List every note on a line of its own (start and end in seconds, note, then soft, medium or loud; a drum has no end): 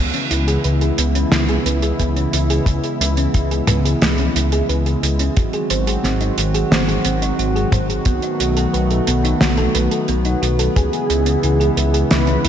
0.00 0.11 C#2 loud
0.00 5.33 C#3 medium
0.00 5.33 E3 medium
0.00 8.02 G#3 medium
0.00 0.13 B3 medium
0.00 5.33 B3 medium
0.00 5.33 E4 medium
0.14 0.23 C#4 medium
0.14 closed hi-hat soft
0.31 0.58 C#2 loud
0.31 0.45 E4 medium
0.31 closed hi-hat medium
0.48 0.56 G#4 loud
0.48 closed hi-hat medium
0.64 0.91 C#2 loud
0.64 0.79 B4 medium
0.64 closed hi-hat medium
0.81 0.90 G#4 medium
0.81 closed hi-hat soft
0.98 1.25 C#2 medium
0.98 1.14 B3 medium
0.98 closed hi-hat loud
1.15 1.24 C#4 medium
1.15 closed hi-hat medium
1.32 1.59 C#2 medium
1.32 1.46 E4 medium
1.32 snare loud
1.32 closed hi-hat medium
1.49 1.58 G#4 loud
1.49 closed hi-hat soft
1.66 1.93 C#2 loud
1.66 1.80 B4 medium
1.66 closed hi-hat loud
1.82 1.91 G#4 medium
1.82 closed hi-hat medium
2.00 2.26 C#2 loud
2.00 2.16 B3 medium
2.00 kick medium
2.00 closed hi-hat medium
2.16 2.25 C#4 medium
2.16 closed hi-hat soft
2.33 2.60 C#2 medium
2.33 2.48 E4 medium
2.33 closed hi-hat medium
2.50 2.59 G#4 loud
2.50 closed hi-hat medium
2.66 2.80 C#2 loud
2.66 2.81 B4 medium
2.66 kick loud
2.66 closed hi-hat medium
2.84 2.92 G#4 medium
2.84 closed hi-hat soft
3.01 3.27 C#2 loud
3.01 3.17 B3 medium
3.01 closed hi-hat loud
3.17 3.26 C#4 medium
3.17 closed hi-hat medium
3.34 3.61 C#2 loud
3.34 3.49 E4 medium
3.34 kick loud
3.34 closed hi-hat medium
3.51 3.60 G#4 loud
3.51 closed hi-hat soft
3.67 3.95 C#2 medium
3.67 3.82 B4 medium
3.67 closed hi-hat loud
3.67 mid tom medium
3.85 3.94 G#4 medium
3.85 closed hi-hat medium
4.02 4.29 C#2 medium
4.02 4.18 B3 medium
4.02 snare loud
4.02 closed hi-hat medium
4.18 4.27 C#4 medium
4.18 closed hi-hat soft
4.35 4.62 C#2 loud
4.35 4.50 E4 medium
4.35 closed hi-hat loud
4.52 4.61 G#4 loud
4.52 closed hi-hat medium
4.69 4.96 C#2 loud
4.69 4.84 B4 medium
4.69 closed hi-hat medium
4.86 4.95 G#4 medium
4.86 closed hi-hat soft
5.03 5.30 C#2 medium
5.03 5.19 B3 medium
5.03 closed hi-hat loud
5.19 5.28 C#4 medium
5.19 closed hi-hat medium
5.36 5.50 G#1 loud
5.36 10.72 D#3 medium
5.36 10.72 F#3 medium
5.36 8.03 C4 medium
5.36 10.72 F#4 medium
5.36 5.51 F#4 medium
5.36 kick loud
5.36 closed hi-hat medium
5.53 5.62 G#4 loud
5.53 closed hi-hat soft
5.70 5.97 G#1 loud
5.70 5.85 C5 medium
5.70 closed hi-hat loud
5.87 5.96 G#4 medium
5.87 closed hi-hat medium
6.04 6.31 G#1 loud
6.04 6.20 C4 medium
6.04 snare soft
6.04 closed hi-hat medium
6.21 6.29 D#4 medium
6.21 closed hi-hat soft
6.38 6.65 G#1 medium
6.38 6.52 F#4 medium
6.38 closed hi-hat loud
6.54 6.63 G#4 loud
6.54 closed hi-hat medium
6.71 6.98 G#1 medium
6.71 6.86 C5 medium
6.71 snare loud
6.71 closed hi-hat medium
6.88 6.97 G#4 medium
6.88 closed hi-hat soft
7.05 7.32 G#1 loud
7.05 7.21 C4 medium
7.05 closed hi-hat loud
7.22 7.31 D#4 medium
7.22 closed hi-hat medium
7.39 7.66 G#1 loud
7.39 7.53 F#4 medium
7.39 closed hi-hat medium
7.56 7.64 G#4 loud
7.56 closed hi-hat soft
7.72 7.99 G#1 medium
7.72 7.87 C5 medium
7.72 kick loud
7.72 closed hi-hat loud
7.72 mid tom medium
7.89 7.98 G#4 medium
7.89 closed hi-hat medium
8.05 8.19 B1 loud
8.05 10.73 A3 medium
8.05 8.22 B3 medium
8.05 12.48 B3 medium
8.05 kick loud
8.05 closed hi-hat medium
8.22 8.32 D#4 medium
8.22 closed hi-hat soft
8.40 8.67 B1 loud
8.40 8.54 F#4 medium
8.40 closed hi-hat loud
8.57 8.65 A4 loud
8.57 closed hi-hat medium
8.73 9.01 B1 loud
8.73 8.88 B4 medium
8.73 closed hi-hat medium
8.90 8.99 A4 medium
8.90 closed hi-hat soft
9.07 9.34 B1 medium
9.07 9.23 B3 medium
9.07 closed hi-hat loud
9.24 9.33 D#4 medium
9.24 closed hi-hat medium
9.41 9.68 B1 medium
9.41 9.55 F#4 medium
9.41 snare loud
9.41 closed hi-hat medium
9.57 9.66 A4 loud
9.57 closed hi-hat soft
9.75 9.88 B1 medium
9.75 9.89 B4 medium
9.75 closed hi-hat loud
9.91 10.00 A4 medium
9.91 closed hi-hat medium
10.08 10.35 B1 medium
10.08 10.24 B3 medium
10.08 closed hi-hat medium
10.25 10.34 D#4 medium
10.25 closed hi-hat soft
10.42 10.69 B1 loud
10.42 10.56 F#4 medium
10.42 closed hi-hat medium
10.59 10.68 A4 loud
10.59 closed hi-hat medium
10.76 10.90 C#2 loud
10.76 12.48 C#3 medium
10.76 12.48 E3 medium
10.76 12.48 G#3 medium
10.76 12.48 E4 medium
10.76 11.97 G#4 loud
10.76 10.90 B4 medium
10.76 kick loud
10.76 closed hi-hat medium
10.93 11.01 G#4 medium
10.93 closed hi-hat soft
11.10 11.37 C#2 loud
11.10 11.26 B3 medium
11.10 closed hi-hat medium
11.26 11.35 C#4 medium
11.26 closed hi-hat medium
11.43 11.70 C#2 loud
11.43 11.58 E4 medium
11.43 closed hi-hat medium
11.60 11.69 G#4 loud
11.60 closed hi-hat soft
11.77 12.04 C#2 medium
11.77 11.91 B4 medium
11.77 closed hi-hat medium
11.94 12.02 G#4 medium
11.94 closed hi-hat medium
12.11 12.38 C#2 medium
12.11 12.27 B3 medium
12.11 12.48 B4 loud
12.11 snare loud
12.11 closed hi-hat medium
12.27 12.36 C#4 medium
12.27 closed hi-hat soft
12.44 12.48 C#2 loud
12.44 12.48 E4 medium
12.44 closed hi-hat medium